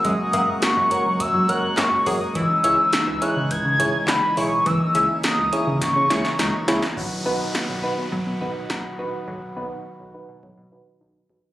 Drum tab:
HH |x-x-x-x-x-x-x-o-|x-x-x-x-x-x-x-o-|x-x-x-x-x-x-x-x-|----------------|
CP |------------x---|------------x---|----------------|----------------|
SD |----o-------o---|----o-------o---|----o---o-ooo-oo|----o-------o---|
BD |o-------o-----o-|o-------o-o-----|o-------o-------|o-------o-o-----|

HH |----------------|
CP |----------------|
SD |----------------|
BD |o-------o-----o-|